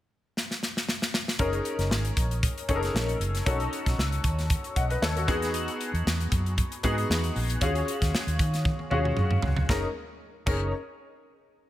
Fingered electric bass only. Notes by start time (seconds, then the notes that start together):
1.39 F#1
1.78 F#1
1.90 G#1
2.17 A#1
2.69 F#1
2.94 A#1
3.20 F#1
3.46 B1
3.86 B1
3.98 C#2
4.24 D#2
4.76 B1
5.02 D#2
5.28 E2
5.93 E2
6.06 E2
6.32 F#2
6.84 G#2
7.09 E2
7.36 A#1
7.61 D#2
8.02 D#2
8.27 D#2
8.39 D#3
8.91 D#2
9.17 F#2
9.43 C#2
9.69 F#1
10.47 F#1